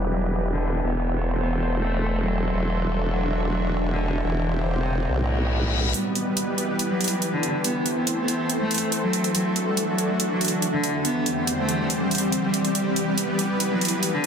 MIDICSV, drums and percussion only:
0, 0, Header, 1, 2, 480
1, 0, Start_track
1, 0, Key_signature, 1, "minor"
1, 0, Tempo, 425532
1, 943, Time_signature, 4, 2, 24, 8
1, 16088, End_track
2, 0, Start_track
2, 0, Title_t, "Drums"
2, 6702, Note_on_c, 9, 42, 84
2, 6815, Note_off_c, 9, 42, 0
2, 6942, Note_on_c, 9, 42, 51
2, 7055, Note_off_c, 9, 42, 0
2, 7182, Note_on_c, 9, 42, 78
2, 7295, Note_off_c, 9, 42, 0
2, 7422, Note_on_c, 9, 42, 52
2, 7535, Note_off_c, 9, 42, 0
2, 7662, Note_on_c, 9, 42, 83
2, 7775, Note_off_c, 9, 42, 0
2, 7903, Note_on_c, 9, 42, 49
2, 7943, Note_off_c, 9, 42, 0
2, 7943, Note_on_c, 9, 42, 66
2, 7983, Note_off_c, 9, 42, 0
2, 7983, Note_on_c, 9, 42, 81
2, 8096, Note_off_c, 9, 42, 0
2, 8143, Note_on_c, 9, 42, 83
2, 8255, Note_off_c, 9, 42, 0
2, 8383, Note_on_c, 9, 42, 51
2, 8496, Note_off_c, 9, 42, 0
2, 8622, Note_on_c, 9, 42, 83
2, 8735, Note_off_c, 9, 42, 0
2, 8862, Note_on_c, 9, 42, 51
2, 8975, Note_off_c, 9, 42, 0
2, 9103, Note_on_c, 9, 42, 83
2, 9215, Note_off_c, 9, 42, 0
2, 9343, Note_on_c, 9, 42, 52
2, 9456, Note_off_c, 9, 42, 0
2, 9583, Note_on_c, 9, 42, 78
2, 9695, Note_off_c, 9, 42, 0
2, 9823, Note_on_c, 9, 42, 51
2, 9864, Note_off_c, 9, 42, 0
2, 9864, Note_on_c, 9, 42, 69
2, 9902, Note_off_c, 9, 42, 0
2, 9902, Note_on_c, 9, 42, 81
2, 10015, Note_off_c, 9, 42, 0
2, 10062, Note_on_c, 9, 42, 81
2, 10175, Note_off_c, 9, 42, 0
2, 10302, Note_on_c, 9, 42, 54
2, 10415, Note_off_c, 9, 42, 0
2, 10425, Note_on_c, 9, 42, 39
2, 10538, Note_off_c, 9, 42, 0
2, 10543, Note_on_c, 9, 42, 80
2, 10655, Note_off_c, 9, 42, 0
2, 10783, Note_on_c, 9, 42, 49
2, 10895, Note_off_c, 9, 42, 0
2, 11022, Note_on_c, 9, 42, 78
2, 11135, Note_off_c, 9, 42, 0
2, 11262, Note_on_c, 9, 42, 53
2, 11375, Note_off_c, 9, 42, 0
2, 11502, Note_on_c, 9, 42, 79
2, 11615, Note_off_c, 9, 42, 0
2, 11742, Note_on_c, 9, 42, 52
2, 11783, Note_off_c, 9, 42, 0
2, 11783, Note_on_c, 9, 42, 66
2, 11822, Note_off_c, 9, 42, 0
2, 11822, Note_on_c, 9, 42, 81
2, 11935, Note_off_c, 9, 42, 0
2, 11982, Note_on_c, 9, 42, 83
2, 12095, Note_off_c, 9, 42, 0
2, 12222, Note_on_c, 9, 42, 52
2, 12335, Note_off_c, 9, 42, 0
2, 12462, Note_on_c, 9, 42, 74
2, 12575, Note_off_c, 9, 42, 0
2, 12703, Note_on_c, 9, 42, 50
2, 12815, Note_off_c, 9, 42, 0
2, 12942, Note_on_c, 9, 42, 79
2, 13055, Note_off_c, 9, 42, 0
2, 13182, Note_on_c, 9, 42, 49
2, 13295, Note_off_c, 9, 42, 0
2, 13422, Note_on_c, 9, 42, 78
2, 13535, Note_off_c, 9, 42, 0
2, 13662, Note_on_c, 9, 42, 48
2, 13703, Note_off_c, 9, 42, 0
2, 13703, Note_on_c, 9, 42, 61
2, 13742, Note_off_c, 9, 42, 0
2, 13742, Note_on_c, 9, 42, 76
2, 13855, Note_off_c, 9, 42, 0
2, 13902, Note_on_c, 9, 42, 77
2, 14014, Note_off_c, 9, 42, 0
2, 14142, Note_on_c, 9, 42, 53
2, 14255, Note_off_c, 9, 42, 0
2, 14265, Note_on_c, 9, 42, 38
2, 14377, Note_off_c, 9, 42, 0
2, 14382, Note_on_c, 9, 42, 75
2, 14495, Note_off_c, 9, 42, 0
2, 14622, Note_on_c, 9, 42, 49
2, 14735, Note_off_c, 9, 42, 0
2, 14862, Note_on_c, 9, 42, 74
2, 14975, Note_off_c, 9, 42, 0
2, 15102, Note_on_c, 9, 42, 49
2, 15215, Note_off_c, 9, 42, 0
2, 15342, Note_on_c, 9, 42, 74
2, 15455, Note_off_c, 9, 42, 0
2, 15582, Note_on_c, 9, 42, 46
2, 15623, Note_off_c, 9, 42, 0
2, 15623, Note_on_c, 9, 42, 60
2, 15662, Note_off_c, 9, 42, 0
2, 15662, Note_on_c, 9, 42, 73
2, 15775, Note_off_c, 9, 42, 0
2, 15822, Note_on_c, 9, 42, 77
2, 15935, Note_off_c, 9, 42, 0
2, 16088, End_track
0, 0, End_of_file